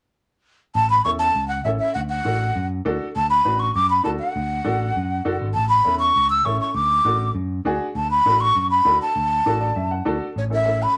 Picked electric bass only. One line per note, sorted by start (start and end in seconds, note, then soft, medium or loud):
0.75 0.99 A1 medium
1.05 1.29 E2 medium
1.35 1.59 C#2 medium
1.65 1.77 A1 loud
1.96 2.19 D2 medium
2.25 2.49 A1 medium
2.56 2.79 F#2 loud
2.85 2.97 D2 loud
3.16 3.40 D2 medium
3.45 3.69 A1 medium
3.76 3.99 F#2 loud
4.06 4.18 D2 medium
4.36 4.60 D2 medium
4.66 4.90 A1 medium
4.96 5.20 F#2 medium
5.26 5.39 F#1 medium
5.41 5.54 G#1 medium
5.55 5.79 A1 medium
5.86 6.10 E2 medium
6.16 6.40 C#2 medium
6.45 6.57 A1 loud
6.75 6.99 D2 medium
7.05 7.29 A1 medium
7.35 7.59 F#2 loud
7.65 7.77 D2 loud
7.95 8.19 D2 loud
8.26 8.50 A1 medium
8.55 8.79 F#2 medium
8.85 8.98 D2 loud
9.16 9.40 D2 loud
9.46 9.70 A1 medium
9.76 10.00 F#2 medium
10.06 10.18 D2 medium
10.36 10.84 A1 medium